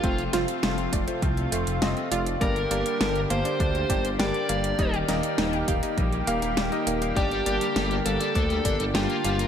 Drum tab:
HH |xxxxxxxxxxxxxxxx|xxxxxxxxxxxxxxxx|xxxxxxxxxxxxxxxx|xxxxxxxxxxxxxxxx|
SD |--o-o-------o---|----o-------o---|--o-o-------o---|----o-------o---|
BD |o-----o-o-------|o-------o-o-----|o-----o-o-------|o-------o-o-----|